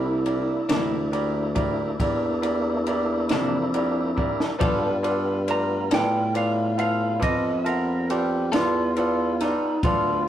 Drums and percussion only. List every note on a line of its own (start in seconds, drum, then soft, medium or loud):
0.26 ride medium
0.69 snare loud
0.69 ride medium
1.13 ride medium
1.56 kick medium
1.56 ride medium
2.00 kick medium
2.00 ride medium
2.43 ride medium
2.87 ride medium
3.29 snare medium
3.29 ride medium
3.74 ride medium
4.18 kick medium
4.40 snare medium
4.61 kick loud
4.61 ride medium
5.04 ride medium
5.48 ride medium
5.91 snare loud
5.91 ride medium
6.35 ride medium
6.79 ride medium
7.22 kick medium
7.22 ride medium
7.66 ride medium
8.10 ride medium
8.53 snare medium
8.53 ride medium
8.96 ride medium
9.41 snare soft
9.41 ride medium
9.83 kick loud
9.83 ride medium